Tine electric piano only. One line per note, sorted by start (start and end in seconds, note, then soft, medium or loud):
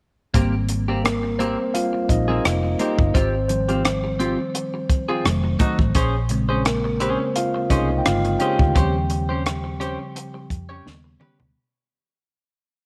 0.34 0.82 G3 soft
0.34 0.82 A#3 soft
0.34 0.82 C4 medium
1.04 1.20 A#3 medium
1.04 1.20 A#4 medium
1.39 1.55 C4 medium
1.39 1.55 C5 medium
1.74 2.06 G3 soft
1.74 2.06 A#3 soft
1.74 2.06 C4 soft
1.74 2.07 F4 medium
1.74 2.10 F5 medium
2.09 2.76 D#4 medium
2.09 2.79 D#5 medium
2.80 3.13 D#4 medium
2.80 3.16 D#5 medium
3.14 3.48 C4 medium
3.14 3.47 C5 medium
3.48 4.51 D#3 medium
3.48 4.51 F3 soft
3.48 4.51 G3 soft
3.48 5.57 C4 medium
3.48 5.55 C5 medium
5.24 5.91 D#3 medium
5.24 5.92 F#3 medium
5.24 5.92 A3 medium
6.30 6.78 C#3 medium
6.30 6.78 G#3 soft
6.30 6.78 C4 medium
6.66 6.99 A#3 medium
6.66 7.02 A#4 medium
7.01 7.34 C4 medium
7.01 7.37 C5 medium
7.36 7.69 F4 medium
7.36 7.72 F5 medium
7.70 7.98 D#4 medium
7.70 8.00 D#5 medium
7.98 8.05 G5 medium
8.06 8.37 C#3 soft
8.06 8.38 G#3 soft
8.06 8.38 C4 medium
8.06 8.39 F4 medium
8.06 8.42 F5 medium
8.39 9.77 G4 medium
8.39 9.76 G5 medium
8.75 9.23 C#3 medium
8.75 9.23 F3 soft
8.75 9.23 G3 medium
8.75 9.24 C4 medium
10.85 11.52 C#3 medium
10.85 11.52 G3 soft
10.85 11.52 B3 medium